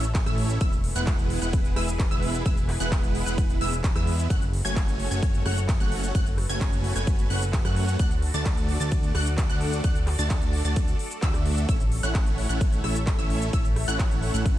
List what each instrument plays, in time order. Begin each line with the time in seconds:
Already playing: analog synth bass A1, analog synth pad A3 A4 C#5 E5
0.03 closed hi-hat, cabasa
0.15 kick, clap, closed hi-hat, ride, cabasa
0.26 analog synth bass A1, supersaw synth A3 C#4 E4 C#5 E5, synth pluck E6, cross-stick, closed hi-hat, cabasa
0.38 open hi-hat
0.49 closed hi-hat, cabasa
0.61 analog synth bass E1, supersaw synth G#3 B3 E4 B4 E5, analog synth pad E4 G#4 B4, synth pluck E6, kick, closed hi-hat, ride, cabasa
0.72 closed hi-hat, cabasa
0.84 open hi-hat
0.96 analog synth bass E1, supersaw synth G#3 B3 E4 B4 F#5, synth pluck F#6, cabasa
1.07 kick, clap, closed hi-hat, ride, cabasa
1.19 closed hi-hat, cabasa
1.30 open hi-hat
1.42 analog synth bass E1, supersaw synth G#3 B3 E4 B4 F#5, synth pluck F#6, closed hi-hat, cabasa
1.53 kick, closed hi-hat, ride, cabasa
1.65 closed hi-hat, cabasa
1.76 analog synth bass E1, supersaw synth G#3 B3 E4 B4 E5, synth pluck E6, cross-stick, open hi-hat
1.88 closed hi-hat, cabasa
1.99 kick, clap, closed hi-hat, ride, cabasa
2.11 analog synth bass E1, supersaw synth G#3 B3 E4 B4 E5, synth pluck E6, closed hi-hat, cabasa
2.23 open hi-hat
2.34 closed hi-hat, cabasa
2.46 analog synth bass E1, supersaw synth G#3 B3 E4 B4 E5, synth pluck E6, kick, closed hi-hat, ride, cabasa
2.57 closed hi-hat, cabasa
2.69 cross-stick, clap, open hi-hat
2.80 analog synth bass E1, supersaw synth G#3 B3 E4 B4 F#5, synth pluck F#6, closed hi-hat, cabasa
2.92 kick, clap, closed hi-hat, ride, cabasa
3.03 closed hi-hat, cabasa
3.15 open hi-hat
3.26 analog synth bass E1, supersaw synth G#3 B3 E4 B4 F#5, synth pluck F#6, closed hi-hat, cabasa
3.38 kick, closed hi-hat, ride, cabasa
3.50 closed hi-hat, cabasa
3.61 analog synth bass E1, supersaw synth G#3 B3 E4 B4 E5, synth pluck E6, open hi-hat
3.73 cabasa
3.84 kick, clap, closed hi-hat, ride, cabasa
3.96 analog synth bass E2, supersaw synth G#3 B3 E4 B4 E5, synth pluck E6, cross-stick, closed hi-hat, cabasa
4.07 open hi-hat
4.19 closed hi-hat, cabasa
4.30 analog synth bass F#1, supersaw synth A3 C#4 F#4 C#5 F#5, analog synth pad F#4 A4 C#5, synth pluck F#6, kick, closed hi-hat, ride, cabasa
4.42 closed hi-hat, cabasa
4.53 open hi-hat
4.65 analog synth bass F#1, supersaw synth A3 C#4 F#4 C#5 G#5, synth pluck G#6, cabasa
4.76 kick, clap, closed hi-hat, ride, cabasa
4.88 closed hi-hat, cabasa
5.00 open hi-hat
5.11 analog synth bass F#1, supersaw synth A3 C#4 F#4 C#5 G#5, synth pluck G#6, cabasa
5.23 kick, closed hi-hat, ride, cabasa
5.34 closed hi-hat, cabasa
5.46 analog synth bass F#1, supersaw synth A3 C#4 F#4 C#5 F#5, synth pluck F#6, cross-stick, open hi-hat
5.57 closed hi-hat, cabasa
5.69 kick, clap, closed hi-hat, ride, cabasa
5.80 analog synth bass F#1, supersaw synth A3 C#4 F#4 C#5 F#5, synth pluck F#6, closed hi-hat, cabasa
5.92 open hi-hat
6.03 closed hi-hat, cabasa
6.15 supersaw synth A3 C#4 F#4 C#5 F#5, analog synth pad B4, synth pluck F#6, kick, closed hi-hat, ride, cabasa
6.26 closed hi-hat, cabasa
6.38 cross-stick, open hi-hat
6.49 analog synth bass F#1, supersaw synth A3 C#4 F#4 C#5 G#5, synth pluck G#6, closed hi-hat, cabasa
6.61 kick, clap, closed hi-hat, ride, cabasa
6.73 closed hi-hat, cabasa
6.84 open hi-hat
6.96 analog synth bass F#1, supersaw synth A3 C#4 F#4 C#5 G#5, synth pluck G#6, cabasa
7.07 kick, closed hi-hat, ride, cabasa
7.19 closed hi-hat, cabasa
7.30 analog synth bass F#1, supersaw synth A3 C#4 F#4 C#5 F#5, synth pluck F#6, open hi-hat
7.42 closed hi-hat, cabasa
7.53 kick, clap, closed hi-hat, ride, cabasa
7.65 analog synth bass F#2, supersaw synth A3 C#4 F#4 C#5 F#5, synth pluck F#6, cross-stick, closed hi-hat, cabasa
7.76 open hi-hat
7.88 closed hi-hat, cabasa
7.99 analog synth bass D2, supersaw synth A3 D4 F#4 D5 F#5, analog synth pad D5, synth pluck F#6, kick, closed hi-hat, ride, cabasa
8.11 closed hi-hat, cabasa
8.22 open hi-hat
8.34 analog synth bass D2, supersaw synth A3 D4 F#4 D5 A5, synth pluck A6, cabasa
8.45 kick, clap, closed hi-hat, ride, cabasa
8.57 closed hi-hat, cabasa
8.69 open hi-hat
8.80 analog synth bass D2, supersaw synth A3 D4 F#4 D5 A5, synth pluck A6, closed hi-hat, cabasa
8.92 kick, closed hi-hat, ride, cabasa
9.03 closed hi-hat, cabasa
9.15 analog synth bass D2, supersaw synth A3 D4 F#4 D5 F#5, synth pluck F#6, cross-stick, open hi-hat
9.26 closed hi-hat, cabasa
9.38 kick, clap, closed hi-hat, ride, cabasa
9.49 analog synth bass D2, supersaw synth A3 D4 F#4 D5 F#5, synth pluck F#6, closed hi-hat, cabasa
9.61 open hi-hat
9.72 closed hi-hat, cabasa
9.84 analog synth bass D2, supersaw synth A3 D4 F#4 D5 F#5, synth pluck F#6, kick, closed hi-hat, ride, cabasa
9.95 closed hi-hat, cabasa
10.07 cross-stick, clap, open hi-hat
10.19 analog synth bass D2, supersaw synth A3 D4 F#4 D5 A5, synth pluck A6, closed hi-hat, cabasa
10.30 kick, clap, closed hi-hat, ride, cabasa
10.42 closed hi-hat, cabasa
10.53 open hi-hat
10.65 analog synth bass D2, supersaw synth A3 D4 F#4 D5 A5, synth pluck A6, closed hi-hat, cabasa
10.76 kick, closed hi-hat, ride, cabasa
10.88 closed hi-hat, cabasa
10.99 open hi-hat
11.11 closed hi-hat, cabasa
11.22 analog synth bass D2, supersaw synth A3 D4 F#4 D5 E5, synth pluck E6, kick, clap, closed hi-hat, ride, cabasa
11.34 cross-stick, closed hi-hat, cabasa
11.46 open hi-hat
11.57 closed hi-hat, cabasa
11.69 analog synth bass A1, supersaw synth A3 C#4 E4 C#5 E5, analog synth pad A3 C#5 E5, synth pluck E6, kick, closed hi-hat, ride, cabasa
11.80 closed hi-hat, cabasa
11.92 open hi-hat
12.03 analog synth bass A1, supersaw synth A3 C#4 E4 C#5 F#5, synth pluck F#6, cabasa
12.15 kick, clap, closed hi-hat, ride, cabasa
12.26 closed hi-hat, cabasa
12.38 open hi-hat
12.49 analog synth bass A1, supersaw synth A3 C#4 E4 C#5 F#5, synth pluck F#6, cabasa
12.61 kick, closed hi-hat, ride, cabasa
12.72 closed hi-hat, cabasa
12.84 analog synth bass A1, supersaw synth A3 C#4 E4 C#5 E5, synth pluck E6, cross-stick, open hi-hat
12.95 closed hi-hat, cabasa
13.07 kick, clap, closed hi-hat, ride, cabasa
13.19 analog synth bass A1, supersaw synth A3 C#4 E4 C#5 E5, synth pluck E6, closed hi-hat, cabasa
13.30 open hi-hat
13.42 closed hi-hat, cabasa
13.53 supersaw synth A3 C#4 E4 C#5 E5, synth pluck E6, kick, closed hi-hat, ride, cabasa
13.65 closed hi-hat, cabasa
13.76 cross-stick, open hi-hat
13.88 analog synth bass A1, supersaw synth A3 C#4 E4 C#5 F#5, synth pluck F#6, closed hi-hat, cabasa
13.99 kick, clap, closed hi-hat, ride, cabasa
14.11 closed hi-hat, cabasa
14.23 open hi-hat
14.34 analog synth bass A1, supersaw synth A3 C#4 E4 C#5 F#5, synth pluck F#6, closed hi-hat, cabasa
14.46 kick, closed hi-hat, ride, cabasa